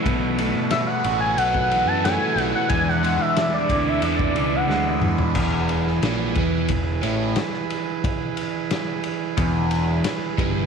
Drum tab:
CC |----------------|----------------|x---------------|----------------|
RD |x-x-x-x-x-x-x-x-|x-x-x-x-x-x-----|--x-x-x-x-x-x-x-|x-x-x-x-x-x-x-x-|
SD |----o-------o-o-|-o--o-------o---|---oo-------oo--|----o-------o---|
T2 |----------------|--------------o-|----------------|----------------|
FT |----------------|---------------o|----------------|----------------|
BD |o--------o------|o-----o--o------|o-----o-o-------|o-------o-----o-|